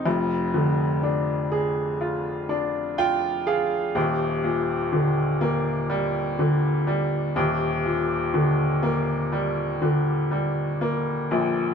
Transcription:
\new Staff \with { instrumentName = "Upright piano" } { \clef bass \time 4/4 \key ees \major \tempo 4 = 62 <f,, f,>8 d8 d'8 aes'8 f'8 d'8 <f' g''>8 <aes' f''>8 | <ees,, ees,>8 bes,8 d8 bes8 g8 d8 g8 <ees,, ees,>8 | bes,8 d8 bes8 g8 d8 g8 bes8 <bes,, bes,>8 | }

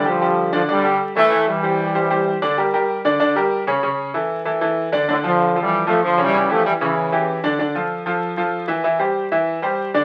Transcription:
<<
  \new Staff \with { instrumentName = "Grand piano" } { \time 4/4 \key d \minor \tempo 4 = 191 <g g' a'>8 <g g' a'>4 <d d' d''>8 <d d' d''>8 <g g' a'>4 <e e' e''>8 | <e e' e''>4 <g g' c''>4 <g g' c''>8 <g g' c''>4 <d d' d''>8 | <g g' bes'>8 <g g' bes'>4 <d d' d''>8 <d d' d''>8 <g g' bes'>4 <cis cis' cis''>8 | <cis cis' cis''>4 <e e' a'>4 <e e' a'>8 <e e' a'>4 <d d' d''>8 |
<d d' d''>8 <f f' a'>4 <f f' a'>4 <f f' a'>4 <cis cis' cis''>8 | <cis cis' cis''>8 <e e' g'>4 <cis cis' cis''>4 <e e' g'>4 <d d' d''>8 | <d d' d''>8 <f f' a'>4 <f f' a'>4 <f f' a'>4 <e e' e''>8 | <e e' e''>8 <g g' c''>4 <e e' e''>4 <g g' c''>4 <d d' d''>8 | }
  \new Staff \with { instrumentName = "Trombone section" } { \clef bass \time 4/4 \key d \minor <d f>4. <d f>8 <d g>4 r8 <e a>8~ | <e a>8 <e g>2. r8 | r1 | r1 |
<a, d>8 <d f>8~ \tuplet 3/2 { <d f>4 <e g>8~ } <e g>8 <f a>8 \tuplet 3/2 { <d f>4 <e g>8~ } | <e g>8 <f a>8 <e g>8 <cis e>2 r8 | r1 | r1 | }
>>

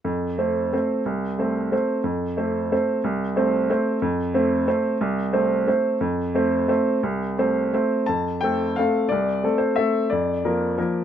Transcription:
\new Staff \with { instrumentName = "Upright piano" } { \time 3/4 \key f \major \tempo 4 = 179 << { r2. | r2. | r2. | r2. |
r2. | r2. | r2. | r2. |
a''4 g''4 f''4 | d''4. c''8 e''4 | d''2. | } \\ { f,4 <a c' c''>4 <a c' c''>4 | c,4 <a c' c''>4 <a c' c''>4 | f,4 <a c' c''>4 <a c' c''>4 | c,4 <a c' c''>4 <a c' c''>4 |
f,4 <a c' c''>4 <a c' c''>4 | c,4 <a c' c''>4 <a c' c''>4 | f,4 <a c' c''>4 <a c' c''>4 | c,4 <a c' c''>4 <a c' c''>4 |
f,4 <a c' a'>4 <a c' a'>4 | c,4 <a c' a'>4 <a c' a'>4 | f,4 <f bes bes'>4 <f bes bes'>4 | } >> }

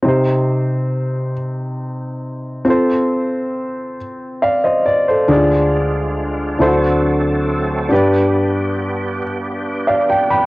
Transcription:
<<
  \new Staff \with { instrumentName = "Grand piano" } { \time 6/8 \key c \minor \tempo 4. = 46 << { r2. | r2 <d'' f''>16 <c'' ees''>16 d''16 <a' c''>16~ | <a' c''>16 r2 r8. | r2 r16 <d'' f''>16 g''16 <g'' b''>16 | } \\ { <c' ees' g' c''>2. | <c' f' a' c''>2. | <d' ees' f' aes' d''>4. <d' e' fis' a' c''>4. | <d' g' b' d''>2. | } >> }
  \new Staff \with { instrumentName = "Grand piano" } { \clef bass \time 6/8 \key c \minor c4. r4. | r2. | d4. d4. | g,4. r4. | }
  \new Staff \with { instrumentName = "Tonewheel organ" } { \time 6/8 \key c \minor r2. | r2. | d'2.~ | d'2. | }
  \new Staff \with { instrumentName = "Tonewheel organ" } { \time 6/8 \key c \minor r2. | r2. | <aes f'>4. <fis a c' a'>4. | <b g'>2. | }
  \new Staff \with { instrumentName = "Fingered electric bass" } { \clef bass \time 6/8 \key c \minor r2. | r2. | d,4. d,4. | r2. | }
>>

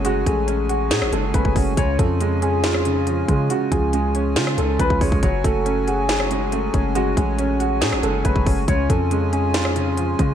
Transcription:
<<
  \new Staff \with { instrumentName = "Grand piano" } { \time 4/4 \key fis \minor \tempo 4 = 139 fis'8 gis'2 a'8 b'8 r8 | cis''8 a'4 gis'2~ gis'8 | fis'8 gis'2 a'8 b'8 cis''8 | cis''8 a'4 gis'2~ gis'8 |
fis'8 gis'2 a'8 b'8 r8 | cis''8 a'4 gis'2~ gis'8 | }
  \new Staff \with { instrumentName = "Harmonium" } { \time 4/4 \key fis \minor << { <fis fis' gis''>1 | <cis eis'>1~ | <cis eis'>1 | <fis fis'>1~ |
<fis fis'>1 | <cis eis' gis''>1 | } \\ { cis'1~ | cis'1~ | cis'1 | cis'1~ |
cis'1 | cis'1 | } >> }
  \new Staff \with { instrumentName = "Felt piano" } { \time 4/4 \key fis \minor <gis a cis' gis'>8 a8 cis'8 fis'8 gis'8 gis8 a8 cis'8 | cis8 eis8 gis8 cis'8 eis'8 cis8 eis8 gis8 | cis8 eis8 gis8 cis'8 eis'8 cis8 eis8 gis8 | fis8 a8 cis'8 fis'8 gis'8 gis8 a8 cis'8 |
gis8 a8 cis'8 fis'8 gis'8 gis8 a8 cis'8 | cis8 eis8 gis8 cis'8 eis'8 cis8 eis8 gis8 | }
  \new Staff \with { instrumentName = "808-style bass" } { \clef bass \time 4/4 \key fis \minor fis,,8 a,,4. a,16 a,,16 fis,,8 fis,,16 fis,,16 fis,,8 | cis,8 eis,2. cis8 | r8 cis,4. cis8 cis,8 cis,16 cis,16 cis,16 cis,16 | fis,,8 fis,,2. fis,,8~ |
fis,,8 a,,4. a,16 a,,16 fis,,8 fis,,16 fis,,16 fis,,8 | cis,8 eis,2. cis8 | }
  \new DrumStaff \with { instrumentName = "Drums" } \drummode { \time 4/4 hh8 <hh bd>8 hh8 hh8 <hh sn>16 ss16 hh8 <hh bd>16 bd16 <hho bd>8 | <hh bd>8 <hh bd>8 hh8 hh8 <hh sn>16 ss16 hh8 hh8 <hh bd>8 | hh8 <hh bd>8 hh8 hh8 <hh sn>16 ss16 hh8 <hh bd>16 bd16 <hho bd>16 bd16 | <hh bd>8 <hh bd>8 hh8 hh8 <hh sn>16 ss16 hh8 hh8 <hh bd>8 |
hh8 <hh bd>8 hh8 hh8 <hh sn>16 ss16 hh8 <hh bd>16 bd16 <hho bd>8 | <hh bd>8 <hh bd>8 hh8 hh8 <hh sn>16 ss16 hh8 hh8 <hh bd>8 | }
>>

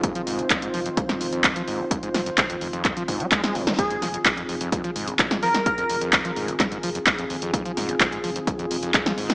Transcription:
<<
  \new Staff \with { instrumentName = "Digital synth lead" } { \time 4/4 \key f \minor \tempo 4 = 128 r1 | r1 | aes'16 r2. r16 bes'16 bes'16 | bes'16 bes'16 r2. r8 |
r1 | }
  \new Staff \with { instrumentName = "Analog synth pad" } { \time 4/4 \key f \minor <ees c' f' c''>1~ | <ees c' f' c''>1 | <ees c' f' aes'>1~ | <ees c' f' aes'>1~ |
<ees c' f' aes'>1 | }
  \new Staff \with { instrumentName = "Acid bass" } { \clef bass \time 4/4 \key f \minor f,16 f16 aes,16 f,,16 f,16 aes,16 f16 f,16 f,16 f,16 f,16 f,16 f,16 f16 aes,16 f,,16 | f,16 aes,16 f16 f,16 f,16 f,16 f,16 f,16 f,16 f16 aes,16 aes16 aes16 aes16 f,16 f16 | f,16 aes,16 f16 f,16 f,16 f,16 f,16 f,16 f,16 f16 aes,16 f,,16 f,16 aes,16 f16 f,16 | f,16 f,16 f,16 f,16 f,16 f16 aes,16 f,,16 f,16 aes,16 f16 f,16 f,16 f,16 f,16 f,16 |
f,16 f16 aes,16 f,,16 f,16 aes,16 f16 f,16 f,16 f,16 f,16 f,16 r16 f16 aes,16 f,,16 | }
  \new Staff \with { instrumentName = "Analog synth bass" } { \clef bass \time 4/4 \key f \minor r8 f,,8 r8 f,,8 r8 f,,8 r8 ees,,8 | r8 f,,8 r8 f,,8 r8 f,,8 r8 f,,8 | r8 f,,8 r8 f,,8 r8 f,,8 r8 ees,,8 | r8 f,,8 r8 f,,8 r8 f,,8 r8 ees,,8 |
r8 f,,8 r8 f,,8 r8 f,,8 r8 ees,,8 | }
  \new DrumStaff \with { instrumentName = "Drums" } \drummode { \time 4/4 <hh bd>16 hh16 hho16 hh16 <hc hh bd>16 hh16 hho16 hh16 <hh bd>16 <hh sn>16 hho16 hh16 <hc hh bd>16 hh16 hho8 | <hh bd>16 hh16 <hho sn>16 hh16 <hc hh bd>16 hh16 hho16 hh16 <hc hh bd>16 hh16 <hho bd>16 hh16 <hc hh bd>16 <hh sn>16 hho16 <hh sn>16 | <hh bd>16 hh16 <hho sn>16 hh16 <hc hh bd>16 hh16 hho16 hh16 <hh bd>16 hh16 hho16 hh16 <hc hh bd>16 <hh sn>16 hho16 <hh sn>16 | <hh bd>16 hh16 hho16 hh16 <hc hh bd>16 hh16 hho16 hh16 <hc hh bd sn>16 hh16 hho16 hh16 <hc hh bd>16 hh16 hho16 hh16 |
<hh bd>16 hh16 <hho sn>16 hh16 <hc hh bd>16 hh16 hho16 hh16 <hh bd>16 hh16 hho16 hh16 <hc hh bd>16 <hh sn>16 hho16 <hh sn>16 | }
>>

